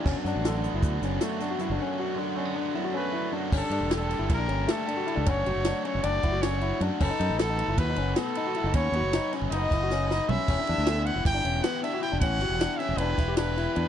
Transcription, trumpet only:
X:1
M:9/8
L:1/8
Q:3/8=104
K:Bm
V:1 name="Trumpet"
z8 z | z6 B2 z | A2 A2 _B2 A3 | c3 c d2 c2 z |
A2 A2 B2 A3 | c3 z ^d4 e- | e3 f g2 f e g | f3 e B2 B3 |]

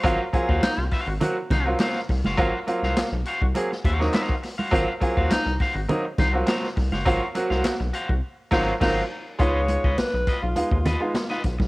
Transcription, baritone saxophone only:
X:1
M:4/4
L:1/16
Q:1/4=103
K:Abmix
V:1 name="Baritone saxophone"
z2 A G E2 z4 E z4 z | z16 | z2 A G E2 z4 E z4 z | z8 z2 E2 E2 z2 |
z16 |]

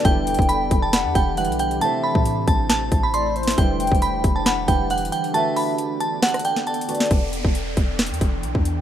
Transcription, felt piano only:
X:1
M:4/4
L:1/8
Q:1/4=136
K:Em
V:1 name="Felt piano"
[D,G,EB]6 [D,G,EB]2 | [C,A,Ec]8 | [D,G,EB]4- [D,G,EB] [D,G,EB]3 | [D,A,FB]6- [D,A,FB] [D,A,FB] |
z8 |]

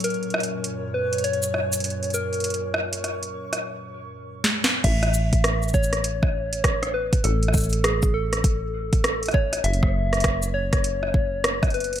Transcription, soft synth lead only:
X:1
M:4/4
L:1/8
Q:"Swing 16ths" 1/4=100
K:A
V:1 name="Soft synth lead"
^A3 B c3 A- | ^A4 z4 | e3 c4 B | A2 G A4 c |
e3 c4 B |]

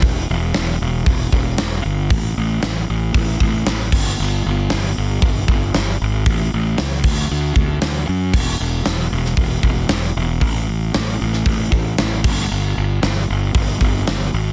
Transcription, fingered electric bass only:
X:1
M:4/4
L:1/8
Q:1/4=115
K:Dmix
V:1 name="Fingered electric bass" clef=bass
E,,, E,,, E,,, E,,, E,,, E,,, E,,, G,,, | A,,, A,,, A,,, A,,, A,,, A,,, A,,, G,,, | G,,, G,,, G,,, G,,, G,,, G,,, G,,, ^G,,, | A,,, A,,, ^C,, D,, D,, D,, D,, F,, |
E,,, E,,, E,,, E,,, E,,, E,,, E,,, E,,, | A,,, A,,, A,,, A,,, A,,, A,,, A,,, G,,, | G,,, G,,, G,,, G,,, G,,, G,,, G,,, ^G,,, |]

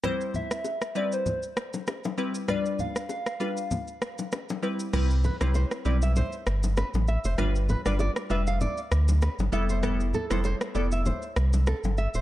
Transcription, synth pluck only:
X:1
M:4/4
L:1/16
Q:"Swing 16ths" 1/4=98
K:C
V:1 name="Synth pluck"
[G,CEc]4 z2 [G,CEB] z6 z [G,CEB] z | [G,DFB]4 z2 [G,DFB] z6 z [G,CEB] z | [G,CEB] z2 [G,CEB]3 [G,CEB]2 z8 | [G,DFB] z2 [G,DFB]3 [G,DFB]2 z6 [G,B,EA]2 |
[G,B,EA] z2 [G,B,EA]3 [G,B,EA]2 z8 |]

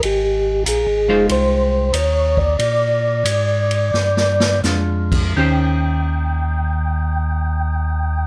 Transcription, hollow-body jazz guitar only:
X:1
M:4/4
L:1/8
Q:"Swing" 1/4=87
K:Ebmix
V:1 name="Hollow-body jazz guitar"
z3 [A,EFc]3 z2 | z6 [A,=DF]2 | [E,DGc]8 |]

